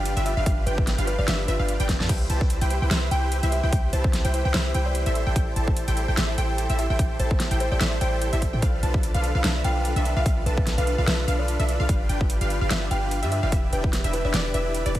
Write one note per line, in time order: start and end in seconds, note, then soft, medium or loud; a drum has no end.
0.00 0.14 G1 loud
0.00 0.14 D4 medium
0.00 0.14 F4 medium
0.00 0.14 G4 medium
0.00 0.14 B4 medium
0.00 0.14 F5 loud
0.05 closed hi-hat medium
0.16 0.35 G1 loud
0.16 0.34 D4 medium
0.16 0.34 F4 medium
0.16 0.34 G4 medium
0.16 0.34 B4 medium
0.16 0.34 E5 loud
0.16 closed hi-hat medium
0.26 0.33 E5 medium
0.26 closed hi-hat medium
0.37 0.44 G1 loud
0.37 0.45 D4 medium
0.37 0.45 F4 medium
0.37 0.45 G4 medium
0.37 0.45 B4 medium
0.37 0.43 E5 medium
0.37 0.45 F5 medium
0.46 0.65 G1 loud
0.46 0.64 D4 medium
0.46 0.64 F4 medium
0.46 0.64 G4 medium
0.46 0.64 B4 medium
0.46 0.64 F5 medium
0.46 0.64 F5 loud
0.46 kick loud
0.46 closed hi-hat medium
0.66 0.96 G1 medium
0.66 0.95 D4 medium
0.66 0.95 F4 medium
0.66 0.95 G4 medium
0.66 0.78 B4 medium
0.66 0.95 B4 medium
0.66 0.95 G5 medium
0.66 0.96 G5 medium
0.66 closed hi-hat medium
0.78 kick loud
0.87 snare medium
0.87 closed hi-hat medium
0.98 1.16 G1 loud
0.98 1.16 D4 medium
0.98 1.16 F4 medium
0.98 1.16 G4 medium
0.98 1.16 B4 medium
0.98 1.16 F5 loud
0.98 closed hi-hat medium
1.07 1.16 B4 medium
1.07 closed hi-hat medium
1.18 1.26 G1 loud
1.18 1.26 D4 medium
1.18 1.26 F4 medium
1.18 1.26 G4 medium
1.18 1.26 B4 medium
1.18 1.28 D5 medium
1.18 1.26 F5 medium
1.27 1.46 G1 medium
1.27 1.46 D4 medium
1.27 1.46 F4 medium
1.27 1.46 G4 medium
1.27 1.46 B4 medium
1.27 1.46 E5 loud
1.27 snare loud
1.27 closed hi-hat medium
1.48 1.57 G1 medium
1.48 1.58 D4 loud
1.48 1.58 F4 medium
1.48 1.58 G4 medium
1.48 1.80 B4 medium
1.48 1.58 B4 medium
1.48 1.58 E5 loud
1.48 closed hi-hat medium
1.59 1.78 G1 loud
1.59 1.77 D4 medium
1.59 1.77 F4 medium
1.59 1.77 G4 medium
1.59 1.77 B4 medium
1.59 1.77 F5 medium
1.69 closed hi-hat medium
1.79 2.02 G1 loud
1.79 1.97 D4 loud
1.79 1.97 F4 loud
1.79 1.97 G4 medium
1.79 1.97 B4 loud
1.79 1.97 G5 loud
1.79 1.98 G5 loud
1.79 closed hi-hat medium
1.89 kick medium
1.89 snare medium
1.89 closed hi-hat medium
2.00 2.08 G2 loud
2.00 2.08 D4 medium
2.00 2.08 F4 medium
2.00 2.08 G4 medium
2.00 2.08 B4 medium
2.00 2.08 A5 medium
2.00 snare medium
2.09 2.28 C2 loud
2.09 2.27 E4 medium
2.09 2.27 G4 medium
2.09 2.27 B4 medium
2.09 2.27 C5 medium
2.09 2.27 G5 loud
2.09 2.28 G5 loud
2.09 kick loud
2.09 closed hi-hat medium
2.09 crash medium
2.29 2.59 C2 loud
2.29 2.59 E4 medium
2.29 2.59 G4 medium
2.29 2.59 B4 medium
2.29 2.59 C5 medium
2.29 2.59 A5 medium
2.29 closed hi-hat medium
2.41 kick loud
2.50 closed hi-hat medium
2.61 2.80 C2 loud
2.61 2.79 E4 loud
2.61 2.79 G4 medium
2.61 2.79 B4 medium
2.61 2.79 C5 medium
2.61 2.79 G5 loud
2.61 closed hi-hat medium
2.70 closed hi-hat medium
2.82 2.89 C2 loud
2.82 2.90 E4 medium
2.82 2.90 G4 medium
2.82 2.90 B4 medium
2.82 2.90 C5 medium
2.82 2.90 G5 medium
2.91 3.10 C2 medium
2.91 3.09 E4 medium
2.91 3.09 G4 medium
2.91 3.09 B4 medium
2.91 3.09 C5 medium
2.91 3.09 E5 loud
2.91 3.09 E5 medium
2.91 snare loud
2.91 closed hi-hat medium
3.11 3.41 C2 loud
3.11 3.40 E4 medium
3.11 3.40 G4 medium
3.11 3.40 B4 medium
3.11 3.40 C5 medium
3.11 3.23 G5 medium
3.11 3.40 G5 loud
3.11 3.41 G5 loud
3.11 closed hi-hat medium
3.32 closed hi-hat medium
3.43 3.61 C2 loud
3.43 3.61 E4 medium
3.43 3.61 G4 medium
3.43 3.61 B4 medium
3.43 3.61 C5 medium
3.43 3.61 E5 loud
3.43 closed hi-hat medium
3.52 3.60 E5 medium
3.52 closed hi-hat medium
3.63 3.71 C2 loud
3.63 3.71 E4 medium
3.63 3.71 G4 medium
3.63 3.71 B4 medium
3.63 3.71 C5 medium
3.63 3.69 E5 medium
3.63 3.71 G5 medium
3.73 3.91 C2 loud
3.73 3.91 E4 medium
3.73 3.91 G4 medium
3.73 3.91 B4 medium
3.73 3.91 C5 medium
3.73 3.91 G5 loud
3.73 kick loud
3.73 closed hi-hat medium
3.93 4.22 C2 loud
3.93 4.22 E4 medium
3.93 4.22 G4 medium
3.93 4.22 B4 medium
3.93 4.05 C5 medium
3.93 4.22 C5 medium
3.93 4.22 A5 medium
3.93 closed hi-hat medium
4.04 kick loud
4.13 snare medium
4.13 closed hi-hat medium
4.25 4.43 C2 loud
4.25 4.42 E4 loud
4.25 4.42 G4 medium
4.25 4.42 B4 medium
4.25 4.31 C5 medium
4.25 4.42 C5 medium
4.25 4.42 G5 loud
4.25 closed hi-hat medium
4.34 4.41 C5 medium
4.34 closed hi-hat medium
4.45 4.53 C2 loud
4.45 4.53 E4 medium
4.45 4.53 G4 medium
4.45 4.53 B4 medium
4.45 4.53 C5 medium
4.45 4.53 G5 medium
4.54 4.73 C2 loud
4.54 4.72 E4 medium
4.54 4.72 G4 medium
4.54 4.72 B4 medium
4.54 4.66 C5 medium
4.54 4.73 C5 medium
4.54 4.72 E5 loud
4.54 4.73 E5 loud
4.54 snare loud
4.54 closed hi-hat medium
4.74 5.04 C2 loud
4.74 5.04 E4 loud
4.74 5.04 G4 medium
4.74 5.04 B4 medium
4.74 5.04 C5 medium
4.74 5.04 G5 loud
4.74 closed hi-hat medium
4.86 5.20 D5 medium
4.95 closed hi-hat medium
5.06 5.25 A1 loud
5.06 5.24 E4 medium
5.06 5.24 G4 medium
5.06 5.24 A4 medium
5.06 5.24 C5 medium
5.06 5.24 E5 loud
5.06 closed hi-hat medium
5.15 closed hi-hat medium
5.27 5.34 A1 loud
5.27 5.35 E4 medium
5.27 5.34 G4 medium
5.27 5.34 A4 medium
5.27 5.34 C5 medium
5.27 5.34 G5 medium
5.36 5.54 E4 medium
5.36 5.54 G4 medium
5.36 5.54 A4 medium
5.36 5.54 C5 medium
5.36 5.54 G5 loud
5.36 kick loud
5.36 closed hi-hat medium
5.56 5.86 A1 loud
5.56 5.85 E4 medium
5.56 5.85 G4 medium
5.56 5.85 A4 medium
5.56 5.85 C5 medium
5.56 5.85 A5 medium
5.56 closed hi-hat medium
5.68 kick loud
5.77 closed hi-hat medium
5.88 6.06 A1 loud
5.88 6.06 E4 loud
5.88 6.06 G4 medium
5.88 6.06 A4 medium
5.88 6.06 C5 medium
5.88 6.06 G5 loud
5.88 closed hi-hat medium
5.97 closed hi-hat medium
6.08 6.16 A1 loud
6.08 6.16 E4 medium
6.08 6.16 G4 medium
6.08 6.16 A4 medium
6.08 6.16 C5 medium
6.08 6.16 G5 medium
6.17 6.36 A1 loud
6.17 6.36 E4 medium
6.17 6.36 G4 medium
6.17 6.36 A4 medium
6.17 6.36 C5 medium
6.17 6.36 E5 loud
6.17 snare loud
6.17 closed hi-hat medium
6.38 6.67 A1 loud
6.38 6.67 E4 medium
6.38 6.67 G4 medium
6.38 6.67 A4 medium
6.38 6.67 C5 medium
6.38 6.67 G5 loud
6.38 6.50 G5 medium
6.38 6.67 G5 loud
6.38 closed hi-hat medium
6.58 closed hi-hat medium
6.69 6.88 A1 loud
6.69 6.87 E4 medium
6.69 6.87 G4 medium
6.69 6.87 A4 medium
6.69 6.87 C5 medium
6.69 6.87 E5 loud
6.69 closed hi-hat medium
6.79 6.86 E5 medium
6.79 closed hi-hat medium
6.90 6.97 A1 loud
6.90 6.98 E4 medium
6.90 6.98 G4 medium
6.90 6.98 A4 medium
6.90 6.98 C5 medium
6.90 6.96 E5 medium
6.90 6.98 G5 medium
6.99 7.18 A1 loud
6.99 7.17 E4 medium
6.99 7.17 G4 medium
6.99 7.17 A4 medium
6.99 7.17 C5 medium
6.99 7.17 G5 loud
6.99 kick loud
6.99 closed hi-hat medium
7.19 7.49 A1 loud
7.19 7.49 E4 medium
7.19 7.49 G4 medium
7.19 7.49 A4 medium
7.19 7.31 C5 medium
7.19 7.49 C5 medium
7.19 7.49 A5 medium
7.19 closed hi-hat medium
7.31 kick loud
7.40 snare medium
7.40 closed hi-hat medium
7.51 7.69 A1 loud
7.51 7.69 E4 loud
7.51 7.69 G4 medium
7.51 7.69 A4 medium
7.51 7.69 C5 medium
7.51 7.69 G5 loud
7.51 closed hi-hat medium
7.60 7.69 C5 medium
7.60 closed hi-hat medium
7.71 7.79 A1 loud
7.71 7.79 E4 medium
7.71 7.79 G4 medium
7.71 7.79 A4 medium
7.71 7.79 C5 medium
7.71 7.81 D5 medium
7.71 7.79 G5 medium
7.81 7.99 A1 medium
7.81 7.99 E4 medium
7.81 7.99 G4 medium
7.81 7.99 A4 medium
7.81 7.99 C5 medium
7.81 7.99 E5 loud
7.81 snare loud
7.81 closed hi-hat medium
8.01 8.31 A1 loud
8.01 8.30 E4 loud
8.01 8.30 G4 medium
8.01 8.30 A4 medium
8.01 8.30 C5 medium
8.01 8.33 C5 medium
8.01 8.30 G5 loud
8.01 closed hi-hat medium
8.22 closed hi-hat medium
8.33 8.51 A1 loud
8.33 8.51 E4 loud
8.33 8.51 G4 medium
8.33 8.51 A4 medium
8.33 8.51 C5 medium
8.33 8.51 E5 loud
8.33 closed hi-hat medium
8.42 kick medium
8.42 closed hi-hat medium
8.53 8.61 A2 loud
8.53 8.61 E4 medium
8.53 8.61 G4 medium
8.53 8.61 A4 medium
8.53 8.61 C5 medium
8.53 8.61 G5 medium
8.62 8.81 B1 loud
8.62 8.81 D4 medium
8.62 8.81 F4 medium
8.62 8.81 A4 medium
8.62 8.81 B4 medium
8.62 8.81 F5 loud
8.62 8.81 F5 medium
8.62 kick loud
8.62 closed hi-hat medium
8.83 9.12 B1 loud
8.83 9.12 D4 medium
8.83 9.12 F4 medium
8.83 9.12 A4 medium
8.83 9.12 B4 medium
8.83 9.12 A5 medium
8.83 closed hi-hat medium
8.94 kick loud
9.03 closed hi-hat medium
9.14 9.33 B1 loud
9.14 9.32 D4 medium
9.14 9.32 F4 medium
9.14 9.32 A4 medium
9.14 9.32 B4 medium
9.14 9.32 F5 loud
9.14 closed hi-hat medium
9.24 closed hi-hat medium
9.35 9.42 B1 loud
9.35 9.43 D4 medium
9.35 9.43 F4 medium
9.35 9.43 A4 medium
9.35 9.43 B4 medium
9.35 9.43 F5 medium
9.44 9.63 B1 loud
9.44 9.62 D4 medium
9.44 9.62 F4 medium
9.44 9.62 A4 medium
9.44 9.62 B4 medium
9.44 9.62 E5 loud
9.44 snare loud
9.44 closed hi-hat medium
9.64 9.94 B1 loud
9.64 9.93 D4 loud
9.64 9.93 F4 medium
9.64 9.93 A4 medium
9.64 9.93 B4 medium
9.64 9.93 F5 loud
9.64 9.76 G5 medium
9.64 closed hi-hat medium
9.85 closed hi-hat medium
9.96 10.14 B1 loud
9.96 10.14 D4 medium
9.96 10.14 F4 medium
9.96 10.14 A4 medium
9.96 10.14 B4 medium
9.96 10.14 E5 loud
9.96 closed hi-hat medium
10.05 10.12 E5 medium
10.05 closed hi-hat medium
10.16 10.24 B1 loud
10.16 10.24 D4 medium
10.16 10.24 F4 medium
10.16 10.24 A4 medium
10.16 10.24 B4 medium
10.16 10.22 E5 medium
10.16 10.24 F5 loud
10.26 10.44 B1 loud
10.26 10.44 D4 medium
10.26 10.44 F4 medium
10.26 10.44 A4 medium
10.26 10.44 B4 medium
10.26 10.44 F5 loud
10.26 10.44 F5 medium
10.26 kick loud
10.26 closed hi-hat medium
10.46 10.76 B1 loud
10.46 10.75 D4 medium
10.46 10.75 F4 medium
10.46 10.75 A4 medium
10.46 10.75 B4 medium
10.46 10.58 B4 medium
10.46 10.75 A5 medium
10.46 closed hi-hat medium
10.57 kick loud
10.67 snare medium
10.67 closed hi-hat medium
10.78 10.96 B1 loud
10.78 10.95 D4 loud
10.78 10.96 F4 medium
10.78 10.96 A4 medium
10.78 10.96 B4 medium
10.78 10.84 B4 medium
10.78 10.96 F5 loud
10.78 closed hi-hat medium
10.87 10.94 B4 medium
10.87 closed hi-hat medium
10.98 11.06 B1 medium
10.98 11.06 D4 medium
10.98 11.06 F4 medium
10.98 11.06 A4 medium
10.98 11.06 B4 medium
10.98 11.06 F5 medium
11.07 11.26 B1 loud
11.07 11.26 D4 medium
11.07 11.26 F4 medium
11.07 11.26 A4 medium
11.07 11.19 B4 loud
11.07 11.26 B4 medium
11.07 11.26 E5 loud
11.07 snare loud
11.07 closed hi-hat medium
11.28 11.57 B1 loud
11.28 11.57 D4 medium
11.28 11.57 F4 medium
11.28 11.57 A4 medium
11.28 11.57 B4 medium
11.28 11.57 F5 loud
11.28 closed hi-hat medium
11.39 11.93 D5 medium
11.48 closed hi-hat medium
11.59 11.78 B1 loud
11.59 11.77 D4 medium
11.59 11.77 F4 medium
11.59 11.77 A4 medium
11.59 11.77 B4 medium
11.59 11.77 E5 loud
11.59 closed hi-hat medium
11.69 closed hi-hat medium
11.80 11.87 B1 loud
11.80 11.88 D4 medium
11.80 11.88 F4 medium
11.80 11.88 A4 medium
11.80 11.88 B4 medium
11.80 11.88 F5 loud
11.80 11.88 F5 medium
11.89 12.08 G1 loud
11.89 12.07 D4 medium
11.89 12.07 F4 medium
11.89 12.07 G4 medium
11.89 12.07 B4 medium
11.89 12.07 F5 medium
11.89 12.07 F5 loud
11.89 kick loud
11.89 closed hi-hat medium
12.09 12.39 G1 loud
12.09 12.38 D4 medium
12.09 12.38 F4 medium
12.09 12.38 G4 medium
12.09 12.38 B4 medium
12.09 12.38 G5 medium
12.09 closed hi-hat medium
12.21 kick loud
12.30 closed hi-hat medium
12.41 12.59 G1 loud
12.41 12.59 D4 loud
12.41 12.59 F4 medium
12.41 12.59 G4 medium
12.41 12.59 B4 medium
12.41 12.59 F5 loud
12.41 closed hi-hat medium
12.50 closed hi-hat medium
12.61 12.69 G1 loud
12.61 12.69 D4 medium
12.61 12.69 F4 medium
12.61 12.69 G4 medium
12.61 12.69 B4 medium
12.61 12.69 F5 medium
12.70 12.89 G1 medium
12.70 12.89 D4 medium
12.70 12.89 F4 medium
12.70 12.89 G4 medium
12.70 12.89 B4 medium
12.70 12.89 E5 loud
12.70 snare loud
12.70 closed hi-hat medium
12.91 13.24 G1 loud
12.91 13.20 D4 medium
12.91 13.20 F4 medium
12.91 13.20 G4 medium
12.91 13.20 B4 medium
12.91 13.20 F5 loud
12.91 13.03 G5 medium
12.91 closed hi-hat medium
13.11 closed hi-hat medium
13.23 13.41 G2 loud
13.23 13.40 D4 loud
13.23 13.40 F4 medium
13.23 13.40 G4 medium
13.23 13.40 B4 medium
13.23 13.40 E5 loud
13.23 closed hi-hat medium
13.32 13.39 E5 medium
13.32 closed hi-hat medium
13.43 13.54 G1 loud
13.43 13.51 D4 medium
13.43 13.51 F4 medium
13.43 13.51 G4 medium
13.43 13.51 B4 medium
13.43 13.49 E5 medium
13.43 13.51 F5 medium
13.52 13.71 E1 loud
13.52 13.71 D4 medium
13.52 13.71 E4 medium
13.52 13.71 G4 medium
13.52 13.71 B4 medium
13.52 13.70 E5 medium
13.52 13.71 E5 loud
13.52 kick loud
13.52 closed hi-hat medium
13.73 14.02 E1 loud
13.73 14.02 D4 medium
13.73 14.02 E4 medium
13.73 14.02 G4 medium
13.73 14.02 B4 medium
13.73 13.85 B4 medium
13.73 14.02 G5 medium
13.73 closed hi-hat medium
13.84 kick loud
13.93 snare medium
13.93 closed hi-hat medium
14.04 14.23 E1 loud
14.04 14.22 D4 loud
14.04 14.22 E4 medium
14.04 14.22 G4 medium
14.04 14.22 B4 medium
14.04 14.22 E5 loud
14.04 closed hi-hat medium
14.13 14.23 B4 medium
14.13 closed hi-hat medium
14.25 14.32 E1 loud
14.25 14.33 D4 medium
14.25 14.33 E4 medium
14.25 14.33 G4 medium
14.25 14.33 B4 medium
14.25 14.35 D5 medium
14.25 14.33 E5 medium
14.34 14.52 E1 loud
14.34 14.52 D4 medium
14.34 14.52 E4 medium
14.34 14.52 G4 medium
14.34 14.52 B4 medium
14.34 14.52 D5 loud
14.34 snare loud
14.34 closed hi-hat medium
14.54 14.84 E1 loud
14.54 14.83 D4 medium
14.54 14.83 E4 medium
14.54 14.83 G4 medium
14.54 14.86 B4 medium
14.54 14.83 B4 medium
14.54 14.83 E5 loud
14.54 closed hi-hat medium
14.75 closed hi-hat medium
14.86 14.99 E1 loud
14.86 14.99 D4 medium
14.86 14.99 E4 medium
14.86 14.99 G4 medium
14.86 14.99 B4 medium
14.86 14.99 D5 loud
14.86 closed hi-hat medium
14.95 kick medium
14.95 closed hi-hat medium